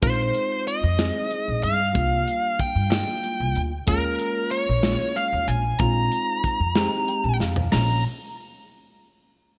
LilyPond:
<<
  \new Staff \with { instrumentName = "Lead electric guitar" } { \time 6/8 \key bes \dorian \tempo 4. = 62 c''4 ees''4. f''8~ | f''4 g''8 g''4 r8 | bes'4 des''4 f''8 aes''8 | bes''2~ bes''8 r8 |
bes''8 r2 r8 | }
  \new Staff \with { instrumentName = "Reed electric piano" } { \time 6/8 \key bes \dorian << { r2. | r2. | r2. | r2 g''8 f''8 |
r2. | } \\ { <aes c' ees' f'>4~ <aes c' ees' f'>16 r16 <aes c' ees' aes'>4~ <aes c' ees' aes'>16 r16 | <g bes d' f'>4~ <g bes d' f'>16 r16 <g bes d' f'>4~ <g bes d' f'>16 r16 | <aes bes des' f'>4~ <aes bes des' f'>16 r16 <aes bes des' f'>4~ <aes bes des' f'>16 r16 | <aes c' ees' f'>4~ <aes c' ees' f'>16 r16 <aes c' ees' g'>4~ <aes c' ees' g'>16 r16 |
<f bes des' f'>8 r2 r8 | } >> }
  \new Staff \with { instrumentName = "Upright bass" } { \clef bass \time 6/8 \key bes \dorian bes,,8 r8. f,8 r8 bes,,16 g,8 | c,8 r8. g,8 r8 c,16 d,8 | ees,8 r8. bes,,8 r8 ees,16 bes,,8 | bes,,8 r8. f,8 r8 bes,,16 f,8 |
bes,,8 r2 r8 | }
  \new DrumStaff \with { instrumentName = "Drums" } \drummode { \time 6/8 <hh bd>8 hh8 hh8 <hh sn>8 hh8 hh8 | <hh bd>8 hh8 <hh bd>8 <hh sn>8 hh8 hh8 | <hh bd>8 hh8 hh8 <hh sn>8 hh8 hh8 | <hh bd>8 hh8 <hh bd>8 <hh sn>8 hh8 sn16 tomfh16 |
<hho sn>4. r4. | }
>>